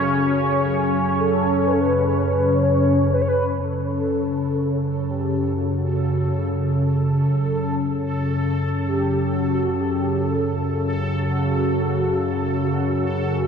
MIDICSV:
0, 0, Header, 1, 5, 480
1, 0, Start_track
1, 0, Tempo, 960000
1, 1808, Time_signature, 4, 2, 24, 8
1, 3240, Tempo, 938967
1, 6815, End_track
2, 0, Start_track
2, 0, Title_t, "Soft synth lead"
2, 0, Program_c, 0, 80
2, 593, Note_on_c, 0, 69, 85
2, 833, Note_on_c, 0, 71, 91
2, 841, Note_off_c, 0, 69, 0
2, 862, Note_on_c, 0, 69, 76
2, 869, Note_off_c, 0, 71, 0
2, 902, Note_on_c, 0, 71, 91
2, 909, Note_off_c, 0, 69, 0
2, 1311, Note_on_c, 0, 73, 105
2, 1319, Note_off_c, 0, 71, 0
2, 1561, Note_off_c, 0, 73, 0
2, 1565, Note_on_c, 0, 71, 107
2, 1605, Note_on_c, 0, 73, 92
2, 1613, Note_off_c, 0, 71, 0
2, 1640, Note_on_c, 0, 71, 115
2, 1648, Note_off_c, 0, 73, 0
2, 1821, Note_on_c, 0, 69, 94
2, 1828, Note_off_c, 0, 71, 0
2, 2550, Note_on_c, 0, 67, 87
2, 2558, Note_off_c, 0, 69, 0
2, 2784, Note_on_c, 0, 66, 79
2, 2792, Note_off_c, 0, 67, 0
2, 3494, Note_off_c, 0, 66, 0
2, 3719, Note_on_c, 0, 69, 101
2, 4186, Note_off_c, 0, 69, 0
2, 4465, Note_on_c, 0, 67, 78
2, 4697, Note_on_c, 0, 66, 75
2, 4705, Note_off_c, 0, 67, 0
2, 4937, Note_on_c, 0, 67, 76
2, 4944, Note_off_c, 0, 66, 0
2, 5168, Note_on_c, 0, 69, 87
2, 5175, Note_off_c, 0, 67, 0
2, 5527, Note_off_c, 0, 69, 0
2, 5647, Note_on_c, 0, 66, 86
2, 6344, Note_off_c, 0, 66, 0
2, 6376, Note_on_c, 0, 66, 89
2, 6815, Note_off_c, 0, 66, 0
2, 6815, End_track
3, 0, Start_track
3, 0, Title_t, "Synth texture"
3, 0, Program_c, 1, 99
3, 1814, Note_on_c, 1, 69, 78
3, 6815, Note_off_c, 1, 69, 0
3, 6815, End_track
4, 0, Start_track
4, 0, Title_t, "Analog synth pad"
4, 0, Program_c, 2, 89
4, 0, Note_on_c, 2, 49, 81
4, 0, Note_on_c, 2, 61, 82
4, 0, Note_on_c, 2, 73, 64
4, 1799, Note_off_c, 2, 49, 0
4, 1805, Note_on_c, 2, 49, 68
4, 6815, Note_off_c, 2, 49, 0
4, 6815, Note_off_c, 2, 61, 0
4, 6815, Note_off_c, 2, 73, 0
4, 6815, End_track
5, 0, Start_track
5, 0, Title_t, "Synth drone"
5, 0, Program_c, 3, 95
5, 0, Note_on_c, 3, 42, 68
5, 0, Note_on_c, 3, 49, 74
5, 1800, Note_off_c, 3, 42, 0
5, 1803, Note_off_c, 3, 49, 0
5, 1806, Note_on_c, 3, 42, 68
5, 1809, Note_on_c, 3, 49, 71
5, 6815, Note_off_c, 3, 42, 0
5, 6815, Note_off_c, 3, 49, 0
5, 6815, End_track
0, 0, End_of_file